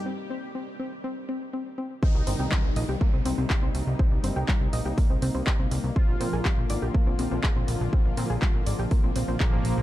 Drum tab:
HH |--------|-o-o-o-o|-o-ooo-o|-o-o-o-o|
CP |--------|--x---x-|--x---x-|--x---x-|
BD |--------|o-o-o-o-|o-o-o-o-|o-o-o-o-|

HH |-o-ooo-o|
CP |--x---x-|
BD |o-o-o-o-|